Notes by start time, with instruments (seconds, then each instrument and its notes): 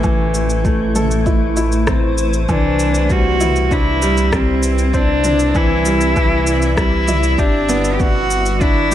Already playing: detuned saw bass A1, upright piano E3 A3 C4 E4, ambient pad A3 E4 B4 C5
0.03 upright piano E3, kick, mid tom, shaker
0.34 shaker
0.50 shaker
0.65 upright piano A3, kick, shaker
0.96 upright piano A4, mid tom, shaker
1.11 shaker
1.26 upright piano E4, kick, shaker
1.57 upright piano E4, shaker
1.72 shaker
1.87 upright piano C4, kick, cross-stick, mid tom, shaker
2.18 shaker
2.33 shaker
2.49 detuned saw bass C2, upright piano E3, ambient pad C4, cello D4, kick, mid tom, shaker
2.79 shaker
2.95 shaker
3.10 upright piano G3, cello F#4, kick, shaker
3.15 ambient pad E4
3.40 upright piano E4, mid tom, shaker
3.56 shaker
3.71 upright piano D4, cello E4, kick, shaker
3.97 ambient pad D5
4.02 upright piano G3, shaker
4.17 shaker
4.32 upright piano G3, cello C4, kick, cross-stick, mid tom, shaker
4.56 ambient pad E5
4.63 shaker
4.78 shaker
4.94 upright piano C4, cello D4, kick, shaker
5.24 upright piano D4, mid tom, shaker
5.39 shaker
5.55 upright piano E3, cello E4, kick, shaker
5.85 upright piano G3, shaker
6.01 shaker
6.16 upright piano E3, kick, mid tom, shaker
6.47 shaker
6.62 shaker
6.77 upright piano G3, cello E4, kick, cross-stick, shaker
7.08 upright piano E4, mid tom, shaker
7.23 shaker
7.38 detuned saw bass G1, ambient pad G3, cello D4, upright piano G4, kick, shaker
7.68 upright piano B3, ambient pad D4, shaker
7.74 ambient pad B4
7.84 shaker
7.94 cello G4
8.00 upright piano B3, cello F#4, kick, mid tom, shaker
8.30 shaker
8.46 shaker
8.61 upright piano D4, cello E4, kick, shaker
8.92 mid tom, shaker